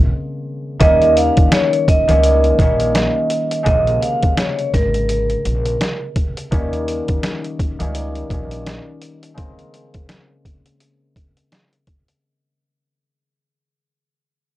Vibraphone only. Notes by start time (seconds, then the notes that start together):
0.81 D#5
1.17 F5
1.53 C#5
1.88 D#5
3.67 D#5
4.01 F5
4.39 C#5
4.74 A#4